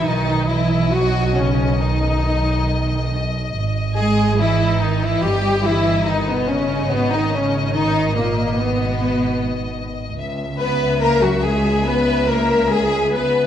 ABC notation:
X:1
M:4/4
L:1/16
Q:1/4=71
K:G#m
V:1 name="Violin section"
d16- | d8 d8- | d16 | e16 |]
V:2 name="Viola section"
D2 E2 F2 C2 D6 z2 | z2 G2 E2 D E =G2 E2 D B, C2 | B, D C2 D2 A,2 B,6 z2 | z2 B2 A F G2 B2 A2 G2 B2 |]
V:3 name="Violin section"
D2 E2 F2 C2 D6 z2 | z2 G2 E2 D E =G2 E2 D B, C2 | B, D C2 D2 A,2 B,6 z2 | z2 B2 A F G2 B2 A2 G2 B2 |]
V:4 name="Cello section" clef=bass
D,2 E,2 F,2 C,2 D,6 z2 | z2 G,2 E,2 D, E, =G,2 E,2 D, B,, C,2 | B,, D, C,2 D,2 A,,2 B,,6 z2 | z2 B,2 A, F, G,2 B,2 A,2 G,2 B,2 |]
V:5 name="Double bass section" clef=bass
B,,,16 | G,,,8 =G,,,8 | G,,,16 | C,,16 |]